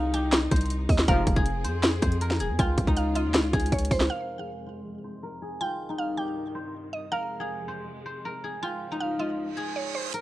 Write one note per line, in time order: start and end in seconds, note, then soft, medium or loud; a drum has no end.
0.00 0.48 C2 loud
0.00 1.07 C3 medium
0.00 1.07 G3 medium
0.00 1.07 D#4 medium
0.00 2.56 D#4 medium
0.00 2.09 F4 loud
0.00 0.20 G#4 medium
0.00 1.08 A#4 loud
0.00 0.51 C5 medium
0.00 0.13 F5 medium
0.14 1.42 G4 medium
0.14 0.85 G5 medium
0.14 closed hi-hat medium
0.32 snare loud
0.32 clap loud
0.32 closed hi-hat medium
0.51 0.88 C2 loud
0.51 1.64 C5 medium
0.51 kick loud
0.51 closed hi-hat medium
0.56 closed hi-hat medium
0.61 closed hi-hat medium
0.66 closed hi-hat soft
0.70 closed hi-hat medium
0.89 1.07 D#2 loud
0.89 1.07 D#5 medium
0.89 kick loud
0.89 open hi-hat medium
0.98 snare medium
0.98 clap medium
1.08 1.26 F1 loud
1.08 1.44 G#2 loud
1.08 1.44 C3 loud
1.08 1.44 F3 loud
1.08 2.58 F3 medium
1.08 2.58 C4 medium
1.08 2.58 G#4 loud
1.08 2.21 A#4 loud
1.08 1.44 F5 loud
1.08 kick loud
1.08 closed hi-hat medium
1.27 1.66 F1 loud
1.27 kick medium
1.27 closed hi-hat medium
1.36 2.40 G#4 medium
1.36 kick loud
1.46 closed hi-hat medium
1.64 2.01 F2 loud
1.64 2.02 C5 medium
1.64 closed hi-hat medium
1.83 snare loud
1.83 clap loud
1.83 closed hi-hat medium
2.02 2.42 F2 loud
2.02 4.00 C5 medium
2.02 kick loud
2.02 closed hi-hat medium
2.12 closed hi-hat soft
2.21 4.10 A#4 medium
2.21 closed hi-hat medium
2.31 snare medium
2.40 2.51 D#1 loud
2.40 3.53 G#4 medium
2.40 closed hi-hat medium
2.50 2.59 F2 loud
2.59 2.77 C#2 loud
2.59 4.08 C#3 medium
2.59 4.08 G#3 medium
2.59 3.15 F4 loud
2.59 4.08 F4 loud
2.59 2.94 G5 medium
2.59 kick loud
2.59 closed hi-hat medium
2.78 3.27 C#2 loud
2.78 kick medium
2.78 closed hi-hat medium
2.87 5.58 D#4 medium
2.87 kick loud
2.97 3.15 F5 medium
2.97 closed hi-hat medium
3.15 5.60 F4 medium
3.15 3.34 D#5 medium
3.15 closed hi-hat medium
3.25 3.41 D#2 loud
3.34 snare loud
3.34 clap loud
3.34 closed hi-hat medium
3.39 3.53 C#2 loud
3.53 3.71 C#2 loud
3.53 4.38 G#4 medium
3.53 kick loud
3.53 closed hi-hat medium
3.60 closed hi-hat medium
3.66 closed hi-hat medium
3.72 3.90 C#2 loud
3.72 3.90 C#5 medium
3.72 kick medium
3.72 closed hi-hat medium
3.79 closed hi-hat medium
3.85 closed hi-hat medium
3.91 4.09 C#2 loud
3.91 4.09 C5 medium
3.91 kick loud
3.91 open hi-hat medium
4.00 snare medium
4.00 clap medium
4.10 5.59 F2 medium
4.10 5.59 C3 medium
4.10 5.59 G#3 medium
4.10 5.22 A#4 medium
4.10 4.45 F5 medium
4.39 5.42 G#4 medium
4.67 5.04 C5 medium
5.04 6.55 C5 medium
5.23 7.11 A#4 medium
5.42 6.23 G#4 medium
5.61 7.10 C2 medium
5.61 7.10 G2 medium
5.61 7.10 D#3 medium
5.61 8.13 F4 medium
5.61 5.96 G5 loud
5.89 8.60 D#4 medium
5.98 6.16 F5 medium
6.17 7.46 G4 medium
6.17 6.89 G5 medium
6.55 7.68 C5 medium
6.93 7.11 D#5 medium
7.12 8.61 F2 medium
7.12 8.61 C3 medium
7.12 8.61 G#3 medium
7.12 8.25 A#4 loud
7.12 7.47 F5 loud
7.40 8.43 G#4 medium
7.68 8.05 C5 medium
8.06 10.04 C5 medium
8.25 10.13 A#4 medium
8.44 9.56 G#4 medium
8.63 10.12 C#2 medium
8.63 10.12 G#2 medium
8.63 10.12 F3 medium
8.63 9.19 F4 medium
8.63 8.98 G5 medium
8.92 10.21 D#4 medium
9.00 9.18 F5 medium
9.19 10.21 F4 medium
9.19 9.37 D#5 medium
9.38 reverse cymbal medium
9.57 10.21 G#4 medium
9.76 9.94 C#5 medium
9.95 10.13 C5 medium
10.14 10.21 A#4 medium
10.14 closed hi-hat medium